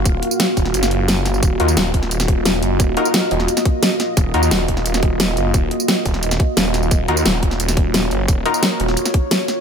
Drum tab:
HH |x-x-x-x-x-x-x-x-|x-x-x-x-x-x-x-x-|x-x-x-x-x-x-x-x-|x-x-x-x-x-x-x-x-|
TB |x--xx-x-xx--x-xx|x--xx---xx--x-x-|x--xx---xx--x-x-|x--xx---xx--x-x-|
SD |----o--o-o--o-o-|----o--o-o--o---|----o--o-o--o-o-|----o--o-o--o---|
BD |o-----o---------|o-----o---o-----|o---------o-----|o-----o---o-----|

HH |x-x-x-x-x-x-x-x-|x-x-x-x-x-x-x-x-|x-x-x-x-x-x-x-x-|
TB |x--xx-x-xx--x-xx|x--xx---xx--x-x-|x--xx---xx--x-x-|
SD |----o--o-o--o-o-|----o--o-o--o---|----o--o-o--o-o-|
BD |o-----o---o-----|o-----o---o-----|o---------o-----|